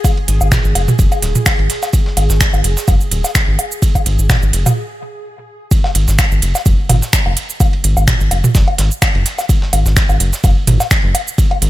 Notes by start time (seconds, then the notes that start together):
Already playing: G#4
0.04 kick, ride, cabasa, low woodblock
0.17 ride
0.28 G#1, open hi-hat, ride
0.41 G#1, cabasa, low woodblock
0.52 finger snap, kick, snare, mid tom, ride, cabasa
0.65 G#1, cabasa
0.75 F#1, open hi-hat, ride, low woodblock
0.88 mid tom, cabasa
0.99 F#1, kick, ride, cabasa
1.12 ride, cabasa, low woodblock
1.22 D#1, snare, open hi-hat, ride
1.35 mid tom, open hi-hat, cabasa
1.46 finger snap, kick, snare, ride, cabasa, low woodblock
1.59 G#1, ride
1.70 snare, open hi-hat, ride
1.83 snare, cabasa, low woodblock
1.93 kick, ride, cabasa
2.06 snare
2.17 G#1, open hi-hat, ride, low woodblock
2.30 G#1, snare, cabasa
2.41 finger snap, kick, snare, ride, cabasa
2.53 G#1, cabasa, low woodblock
2.64 F#1, open hi-hat, ride
2.77 snare, cabasa
2.88 F#1, kick, ride, cabasa, low woodblock
3.01 cabasa
3.11 D#1, open hi-hat, ride
3.24 snare, open hi-hat, cabasa, low woodblock
3.35 finger snap, kick, snare, ride, cabasa
3.48 G#1
3.59 open hi-hat, low woodblock
3.72 cabasa
3.82 kick, ride, cabasa
3.95 kick, ride, cabasa, low woodblock
4.06 G#1, open hi-hat, ride
4.19 G#1, cabasa
4.30 finger snap, kick, snare, mid tom, ride, cabasa, low woodblock
4.43 G#1, cabasa
4.53 F#1, open hi-hat, ride
4.66 mid tom, open hi-hat, cabasa, low woodblock
5.71 kick, ride, cabasa
5.84 snare, low woodblock
5.95 G#1, open hi-hat, ride
6.08 G#1, snare, cabasa
6.19 finger snap, kick, snare, ride, cabasa, low woodblock
6.32 G#1, cabasa
6.42 F#1, open hi-hat, ride
6.55 snare, cabasa, low woodblock
6.66 F#1, kick, ride, cabasa
6.89 G#1, mid tom, open hi-hat, ride, low woodblock
7.02 snare, cabasa
7.13 finger snap, kick, snare, ride, cabasa
7.26 F#1, low woodblock
7.37 open hi-hat, ride
7.50 cabasa
7.60 kick, ride, cabasa, low woodblock
7.73 ride
7.84 G#1, open hi-hat, ride
7.97 G#1, cabasa, low woodblock
8.08 finger snap, kick, snare, mid tom, ride, cabasa
8.21 G#1, cabasa
8.31 F#1, open hi-hat, ride, low woodblock
8.44 mid tom, cabasa
8.55 F#1, kick, snare, ride, cabasa
8.68 ride, low woodblock
8.78 G#1, snare, open hi-hat, ride
8.91 cabasa
9.02 finger snap, kick, snare, ride, cabasa, low woodblock
9.15 F#1, ride
9.26 snare, open hi-hat, ride
9.39 snare, cabasa, low woodblock
9.49 kick, ride, cabasa
9.62 snare
9.73 G#1, open hi-hat, ride, low woodblock
9.86 G#1, snare, cabasa
9.97 finger snap, kick, snare, ride, cabasa
10.09 G#1, cabasa, low woodblock
10.20 F#1, open hi-hat, ride
10.33 snare, cabasa
10.44 F#1, kick, ride, cabasa, low woodblock
10.67 G#1, mid tom, open hi-hat, ride
10.80 snare, cabasa, low woodblock
10.91 finger snap, kick, snare, ride, cabasa
11.04 F#1
11.15 open hi-hat, ride, low woodblock
11.28 cabasa
11.38 kick, ride, cabasa
11.51 ride, low woodblock
11.62 G#1, open hi-hat, ride